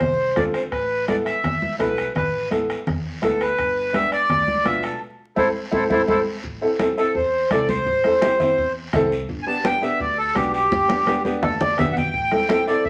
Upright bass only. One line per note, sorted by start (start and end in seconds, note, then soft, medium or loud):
0.00 0.29 C2 medium
0.36 0.65 G1 medium
0.72 1.29 A1 loud
1.44 1.72 E2 medium
1.80 2.08 B1 medium
2.16 2.73 A1 loud
2.87 3.16 E2 medium
3.23 3.51 D2 medium
3.58 4.16 G1 medium
4.30 4.58 D2 medium
4.66 4.94 B1 medium
5.37 5.50 A1 medium
5.73 5.86 A1 medium
5.90 6.04 A1 medium
6.08 6.22 A1 medium
6.44 6.58 A1 medium
7.15 7.44 E2 medium
7.51 7.79 C2 loud
7.86 8.01 A1 loud
8.58 8.86 E2 loud
8.93 9.22 C2 loud
9.29 9.43 G1 loud
10.00 10.29 D2 medium
10.35 10.64 B1 loud
10.72 10.86 G1 medium
11.42 11.71 D2 medium
11.78 12.07 B1 loud
12.14 12.28 A1 loud
12.85 12.89 E2 medium